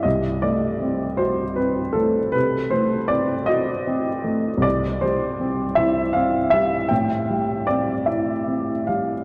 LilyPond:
<<
  \new Staff \with { instrumentName = "Grand piano" } { \time 12/8 \key c \major \tempo 4. = 52 ees''8 d''4 c''8 b'8 a'8 b'8 c''8 d''8 ees''4. | d''8 c''4 e''8 f''8 e''8 g''4 d''8 e''4 f''8 | }
  \new Staff \with { instrumentName = "Grand piano" } { \time 12/8 \key c \major c,8 a8 c'8 ges'8 c'8 a8 c8 a8 c'8 ges'8 c'8 a8 | c,8 g8 c'8 e'8 c'8 g8 a,8 g8 c'8 e'8 c'8 g8 | }
>>